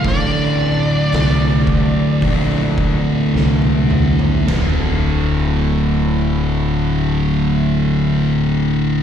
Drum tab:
CC |----------------|x---------------|
HH |o---o---o-------|----------------|
SD |----o-------o---|o---------------|
T1 |-------------o--|----------------|
T2 |--------------o-|----------------|
FT |---------------o|o---------------|
BD |o-----o-o-o-----|----------------|